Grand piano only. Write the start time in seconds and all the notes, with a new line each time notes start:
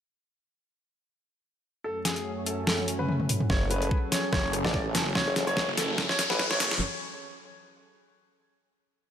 1.84 A4
2.05 G#4
2.46 A4
2.67 A4
2.99 B4
3.50 C#5
3.71 B4
4.12 C#5
4.33 C#5
4.65 D5
5.15 C#5
5.47 C#5
5.77 A4
6.09 C#5
6.30 B4
6.51 C#5